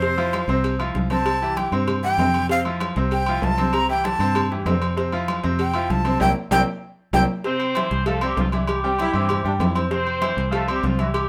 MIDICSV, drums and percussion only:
0, 0, Header, 1, 2, 480
1, 0, Start_track
1, 0, Key_signature, -1, "major"
1, 0, Tempo, 309119
1, 30, Time_signature, 4, 2, 24, 8
1, 17530, End_track
2, 0, Start_track
2, 0, Title_t, "Drums"
2, 35, Note_on_c, 9, 56, 105
2, 43, Note_on_c, 9, 63, 37
2, 190, Note_off_c, 9, 56, 0
2, 198, Note_off_c, 9, 63, 0
2, 277, Note_on_c, 9, 68, 85
2, 286, Note_on_c, 9, 63, 39
2, 433, Note_off_c, 9, 68, 0
2, 442, Note_off_c, 9, 63, 0
2, 514, Note_on_c, 9, 56, 76
2, 516, Note_on_c, 9, 68, 103
2, 526, Note_on_c, 9, 63, 89
2, 669, Note_off_c, 9, 56, 0
2, 672, Note_off_c, 9, 68, 0
2, 681, Note_off_c, 9, 63, 0
2, 759, Note_on_c, 9, 56, 64
2, 914, Note_off_c, 9, 56, 0
2, 996, Note_on_c, 9, 68, 72
2, 998, Note_on_c, 9, 56, 98
2, 999, Note_on_c, 9, 63, 36
2, 1151, Note_off_c, 9, 68, 0
2, 1153, Note_off_c, 9, 56, 0
2, 1155, Note_off_c, 9, 63, 0
2, 1230, Note_on_c, 9, 63, 38
2, 1237, Note_on_c, 9, 68, 94
2, 1385, Note_off_c, 9, 63, 0
2, 1393, Note_off_c, 9, 68, 0
2, 1470, Note_on_c, 9, 63, 100
2, 1475, Note_on_c, 9, 56, 74
2, 1626, Note_off_c, 9, 63, 0
2, 1630, Note_off_c, 9, 56, 0
2, 1709, Note_on_c, 9, 56, 73
2, 1716, Note_on_c, 9, 68, 84
2, 1717, Note_on_c, 9, 63, 74
2, 1864, Note_off_c, 9, 56, 0
2, 1871, Note_off_c, 9, 68, 0
2, 1872, Note_off_c, 9, 63, 0
2, 1952, Note_on_c, 9, 56, 109
2, 1953, Note_on_c, 9, 68, 95
2, 1967, Note_on_c, 9, 63, 32
2, 2107, Note_off_c, 9, 56, 0
2, 2108, Note_off_c, 9, 68, 0
2, 2122, Note_off_c, 9, 63, 0
2, 2211, Note_on_c, 9, 63, 38
2, 2366, Note_off_c, 9, 63, 0
2, 2437, Note_on_c, 9, 63, 98
2, 2438, Note_on_c, 9, 68, 84
2, 2442, Note_on_c, 9, 56, 70
2, 2592, Note_off_c, 9, 63, 0
2, 2593, Note_off_c, 9, 68, 0
2, 2597, Note_off_c, 9, 56, 0
2, 2671, Note_on_c, 9, 63, 33
2, 2677, Note_on_c, 9, 68, 87
2, 2826, Note_off_c, 9, 63, 0
2, 2833, Note_off_c, 9, 68, 0
2, 2912, Note_on_c, 9, 56, 102
2, 2915, Note_on_c, 9, 63, 40
2, 2915, Note_on_c, 9, 64, 80
2, 2915, Note_on_c, 9, 68, 101
2, 3067, Note_off_c, 9, 56, 0
2, 3070, Note_off_c, 9, 63, 0
2, 3070, Note_off_c, 9, 64, 0
2, 3071, Note_off_c, 9, 68, 0
2, 3164, Note_on_c, 9, 63, 37
2, 3319, Note_off_c, 9, 63, 0
2, 3394, Note_on_c, 9, 56, 67
2, 3404, Note_on_c, 9, 63, 91
2, 3404, Note_on_c, 9, 66, 66
2, 3404, Note_on_c, 9, 68, 79
2, 3550, Note_off_c, 9, 56, 0
2, 3559, Note_off_c, 9, 63, 0
2, 3559, Note_off_c, 9, 66, 0
2, 3559, Note_off_c, 9, 68, 0
2, 3637, Note_on_c, 9, 68, 92
2, 3638, Note_on_c, 9, 56, 61
2, 3652, Note_on_c, 9, 63, 69
2, 3792, Note_off_c, 9, 68, 0
2, 3793, Note_off_c, 9, 56, 0
2, 3808, Note_off_c, 9, 63, 0
2, 3872, Note_on_c, 9, 56, 104
2, 4027, Note_off_c, 9, 56, 0
2, 4118, Note_on_c, 9, 68, 91
2, 4125, Note_on_c, 9, 63, 35
2, 4273, Note_off_c, 9, 68, 0
2, 4280, Note_off_c, 9, 63, 0
2, 4355, Note_on_c, 9, 68, 106
2, 4360, Note_on_c, 9, 56, 75
2, 4367, Note_on_c, 9, 63, 84
2, 4510, Note_off_c, 9, 68, 0
2, 4515, Note_off_c, 9, 56, 0
2, 4522, Note_off_c, 9, 63, 0
2, 4596, Note_on_c, 9, 56, 68
2, 4752, Note_off_c, 9, 56, 0
2, 4832, Note_on_c, 9, 68, 66
2, 4843, Note_on_c, 9, 56, 100
2, 4987, Note_off_c, 9, 68, 0
2, 4999, Note_off_c, 9, 56, 0
2, 5068, Note_on_c, 9, 68, 116
2, 5096, Note_on_c, 9, 63, 37
2, 5223, Note_off_c, 9, 68, 0
2, 5251, Note_off_c, 9, 63, 0
2, 5309, Note_on_c, 9, 66, 72
2, 5327, Note_on_c, 9, 56, 75
2, 5334, Note_on_c, 9, 63, 98
2, 5465, Note_off_c, 9, 66, 0
2, 5482, Note_off_c, 9, 56, 0
2, 5489, Note_off_c, 9, 63, 0
2, 5553, Note_on_c, 9, 68, 77
2, 5564, Note_on_c, 9, 56, 67
2, 5574, Note_on_c, 9, 63, 83
2, 5709, Note_off_c, 9, 68, 0
2, 5719, Note_off_c, 9, 56, 0
2, 5729, Note_off_c, 9, 63, 0
2, 5789, Note_on_c, 9, 68, 98
2, 5802, Note_on_c, 9, 56, 109
2, 5945, Note_off_c, 9, 68, 0
2, 5957, Note_off_c, 9, 56, 0
2, 6049, Note_on_c, 9, 63, 36
2, 6204, Note_off_c, 9, 63, 0
2, 6274, Note_on_c, 9, 68, 82
2, 6286, Note_on_c, 9, 56, 73
2, 6289, Note_on_c, 9, 63, 103
2, 6429, Note_off_c, 9, 68, 0
2, 6441, Note_off_c, 9, 56, 0
2, 6444, Note_off_c, 9, 63, 0
2, 6517, Note_on_c, 9, 68, 91
2, 6672, Note_off_c, 9, 68, 0
2, 6757, Note_on_c, 9, 68, 109
2, 6765, Note_on_c, 9, 56, 110
2, 6775, Note_on_c, 9, 63, 40
2, 6775, Note_on_c, 9, 64, 97
2, 6913, Note_off_c, 9, 68, 0
2, 6920, Note_off_c, 9, 56, 0
2, 6931, Note_off_c, 9, 63, 0
2, 6931, Note_off_c, 9, 64, 0
2, 7015, Note_on_c, 9, 63, 37
2, 7015, Note_on_c, 9, 64, 78
2, 7170, Note_off_c, 9, 63, 0
2, 7170, Note_off_c, 9, 64, 0
2, 7237, Note_on_c, 9, 66, 78
2, 7237, Note_on_c, 9, 68, 80
2, 7243, Note_on_c, 9, 56, 78
2, 7248, Note_on_c, 9, 63, 102
2, 7392, Note_off_c, 9, 66, 0
2, 7392, Note_off_c, 9, 68, 0
2, 7398, Note_off_c, 9, 56, 0
2, 7403, Note_off_c, 9, 63, 0
2, 7479, Note_on_c, 9, 68, 94
2, 7488, Note_on_c, 9, 56, 65
2, 7634, Note_off_c, 9, 68, 0
2, 7644, Note_off_c, 9, 56, 0
2, 7725, Note_on_c, 9, 56, 116
2, 7881, Note_off_c, 9, 56, 0
2, 7957, Note_on_c, 9, 68, 90
2, 7960, Note_on_c, 9, 63, 37
2, 8113, Note_off_c, 9, 68, 0
2, 8115, Note_off_c, 9, 63, 0
2, 8203, Note_on_c, 9, 63, 87
2, 8203, Note_on_c, 9, 68, 108
2, 8205, Note_on_c, 9, 56, 75
2, 8358, Note_off_c, 9, 63, 0
2, 8358, Note_off_c, 9, 68, 0
2, 8360, Note_off_c, 9, 56, 0
2, 8441, Note_on_c, 9, 56, 72
2, 8453, Note_on_c, 9, 63, 38
2, 8596, Note_off_c, 9, 56, 0
2, 8608, Note_off_c, 9, 63, 0
2, 8679, Note_on_c, 9, 68, 73
2, 8686, Note_on_c, 9, 56, 101
2, 8834, Note_off_c, 9, 68, 0
2, 8841, Note_off_c, 9, 56, 0
2, 8906, Note_on_c, 9, 68, 113
2, 9062, Note_off_c, 9, 68, 0
2, 9165, Note_on_c, 9, 56, 77
2, 9171, Note_on_c, 9, 63, 96
2, 9321, Note_off_c, 9, 56, 0
2, 9326, Note_off_c, 9, 63, 0
2, 9389, Note_on_c, 9, 68, 73
2, 9395, Note_on_c, 9, 56, 68
2, 9404, Note_on_c, 9, 63, 84
2, 9545, Note_off_c, 9, 68, 0
2, 9550, Note_off_c, 9, 56, 0
2, 9559, Note_off_c, 9, 63, 0
2, 9626, Note_on_c, 9, 65, 92
2, 9633, Note_on_c, 9, 56, 97
2, 9648, Note_on_c, 9, 63, 96
2, 9781, Note_off_c, 9, 65, 0
2, 9789, Note_off_c, 9, 56, 0
2, 9804, Note_off_c, 9, 63, 0
2, 10109, Note_on_c, 9, 65, 99
2, 10118, Note_on_c, 9, 56, 102
2, 10126, Note_on_c, 9, 63, 95
2, 10264, Note_off_c, 9, 65, 0
2, 10273, Note_off_c, 9, 56, 0
2, 10282, Note_off_c, 9, 63, 0
2, 11074, Note_on_c, 9, 65, 91
2, 11080, Note_on_c, 9, 56, 95
2, 11084, Note_on_c, 9, 63, 113
2, 11230, Note_off_c, 9, 65, 0
2, 11236, Note_off_c, 9, 56, 0
2, 11239, Note_off_c, 9, 63, 0
2, 11559, Note_on_c, 9, 56, 99
2, 11570, Note_on_c, 9, 63, 34
2, 11714, Note_off_c, 9, 56, 0
2, 11725, Note_off_c, 9, 63, 0
2, 11797, Note_on_c, 9, 68, 98
2, 11817, Note_on_c, 9, 63, 40
2, 11952, Note_off_c, 9, 68, 0
2, 11972, Note_off_c, 9, 63, 0
2, 12036, Note_on_c, 9, 68, 106
2, 12042, Note_on_c, 9, 56, 78
2, 12059, Note_on_c, 9, 63, 95
2, 12191, Note_off_c, 9, 68, 0
2, 12197, Note_off_c, 9, 56, 0
2, 12214, Note_off_c, 9, 63, 0
2, 12283, Note_on_c, 9, 56, 67
2, 12305, Note_on_c, 9, 63, 37
2, 12439, Note_off_c, 9, 56, 0
2, 12460, Note_off_c, 9, 63, 0
2, 12516, Note_on_c, 9, 56, 110
2, 12517, Note_on_c, 9, 68, 72
2, 12539, Note_on_c, 9, 63, 35
2, 12671, Note_off_c, 9, 56, 0
2, 12673, Note_off_c, 9, 68, 0
2, 12694, Note_off_c, 9, 63, 0
2, 12754, Note_on_c, 9, 68, 115
2, 12781, Note_on_c, 9, 63, 38
2, 12909, Note_off_c, 9, 68, 0
2, 12936, Note_off_c, 9, 63, 0
2, 12997, Note_on_c, 9, 66, 71
2, 13004, Note_on_c, 9, 56, 79
2, 13014, Note_on_c, 9, 63, 100
2, 13153, Note_off_c, 9, 66, 0
2, 13159, Note_off_c, 9, 56, 0
2, 13170, Note_off_c, 9, 63, 0
2, 13235, Note_on_c, 9, 68, 83
2, 13246, Note_on_c, 9, 56, 71
2, 13254, Note_on_c, 9, 63, 83
2, 13391, Note_off_c, 9, 68, 0
2, 13401, Note_off_c, 9, 56, 0
2, 13409, Note_off_c, 9, 63, 0
2, 13470, Note_on_c, 9, 68, 110
2, 13490, Note_on_c, 9, 56, 112
2, 13494, Note_on_c, 9, 63, 36
2, 13626, Note_off_c, 9, 68, 0
2, 13645, Note_off_c, 9, 56, 0
2, 13649, Note_off_c, 9, 63, 0
2, 13727, Note_on_c, 9, 63, 37
2, 13882, Note_off_c, 9, 63, 0
2, 13953, Note_on_c, 9, 68, 81
2, 13966, Note_on_c, 9, 56, 78
2, 13973, Note_on_c, 9, 63, 90
2, 14108, Note_off_c, 9, 68, 0
2, 14121, Note_off_c, 9, 56, 0
2, 14128, Note_off_c, 9, 63, 0
2, 14184, Note_on_c, 9, 68, 90
2, 14214, Note_on_c, 9, 63, 37
2, 14340, Note_off_c, 9, 68, 0
2, 14369, Note_off_c, 9, 63, 0
2, 14424, Note_on_c, 9, 68, 104
2, 14441, Note_on_c, 9, 56, 103
2, 14458, Note_on_c, 9, 63, 39
2, 14458, Note_on_c, 9, 64, 94
2, 14579, Note_off_c, 9, 68, 0
2, 14596, Note_off_c, 9, 56, 0
2, 14613, Note_off_c, 9, 63, 0
2, 14613, Note_off_c, 9, 64, 0
2, 14687, Note_on_c, 9, 63, 37
2, 14687, Note_on_c, 9, 64, 73
2, 14842, Note_off_c, 9, 63, 0
2, 14842, Note_off_c, 9, 64, 0
2, 14908, Note_on_c, 9, 66, 72
2, 14908, Note_on_c, 9, 68, 88
2, 14916, Note_on_c, 9, 63, 106
2, 14924, Note_on_c, 9, 56, 83
2, 15063, Note_off_c, 9, 66, 0
2, 15063, Note_off_c, 9, 68, 0
2, 15071, Note_off_c, 9, 63, 0
2, 15079, Note_off_c, 9, 56, 0
2, 15147, Note_on_c, 9, 68, 95
2, 15154, Note_on_c, 9, 56, 73
2, 15167, Note_on_c, 9, 63, 75
2, 15302, Note_off_c, 9, 68, 0
2, 15309, Note_off_c, 9, 56, 0
2, 15323, Note_off_c, 9, 63, 0
2, 15390, Note_on_c, 9, 56, 105
2, 15401, Note_on_c, 9, 63, 36
2, 15545, Note_off_c, 9, 56, 0
2, 15556, Note_off_c, 9, 63, 0
2, 15628, Note_on_c, 9, 63, 41
2, 15630, Note_on_c, 9, 68, 83
2, 15783, Note_off_c, 9, 63, 0
2, 15786, Note_off_c, 9, 68, 0
2, 15865, Note_on_c, 9, 63, 97
2, 15868, Note_on_c, 9, 68, 109
2, 15874, Note_on_c, 9, 56, 72
2, 16020, Note_off_c, 9, 63, 0
2, 16023, Note_off_c, 9, 68, 0
2, 16029, Note_off_c, 9, 56, 0
2, 16112, Note_on_c, 9, 63, 34
2, 16116, Note_on_c, 9, 56, 68
2, 16267, Note_off_c, 9, 63, 0
2, 16271, Note_off_c, 9, 56, 0
2, 16342, Note_on_c, 9, 68, 71
2, 16348, Note_on_c, 9, 56, 102
2, 16350, Note_on_c, 9, 63, 37
2, 16497, Note_off_c, 9, 68, 0
2, 16503, Note_off_c, 9, 56, 0
2, 16505, Note_off_c, 9, 63, 0
2, 16588, Note_on_c, 9, 63, 39
2, 16591, Note_on_c, 9, 68, 102
2, 16743, Note_off_c, 9, 63, 0
2, 16746, Note_off_c, 9, 68, 0
2, 16822, Note_on_c, 9, 63, 91
2, 16833, Note_on_c, 9, 56, 77
2, 16978, Note_off_c, 9, 63, 0
2, 16989, Note_off_c, 9, 56, 0
2, 17061, Note_on_c, 9, 63, 82
2, 17064, Note_on_c, 9, 56, 72
2, 17065, Note_on_c, 9, 68, 80
2, 17217, Note_off_c, 9, 63, 0
2, 17219, Note_off_c, 9, 56, 0
2, 17221, Note_off_c, 9, 68, 0
2, 17301, Note_on_c, 9, 56, 113
2, 17306, Note_on_c, 9, 68, 115
2, 17457, Note_off_c, 9, 56, 0
2, 17461, Note_off_c, 9, 68, 0
2, 17530, End_track
0, 0, End_of_file